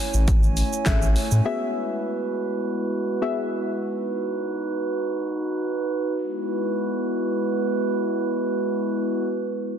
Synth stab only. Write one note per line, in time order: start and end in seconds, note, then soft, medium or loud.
0.86 1.34 C#4 medium
0.86 1.34 G#4 medium
0.86 1.34 A4 medium
0.86 1.34 E5 loud
1.45 2.39 B3 medium
1.45 2.39 F#4 medium
1.45 2.39 G#4 medium
1.45 2.39 E5 loud
3.22 3.69 B3 medium
3.22 3.69 F#4 medium
3.22 3.69 G#4 medium
3.22 3.69 E5 loud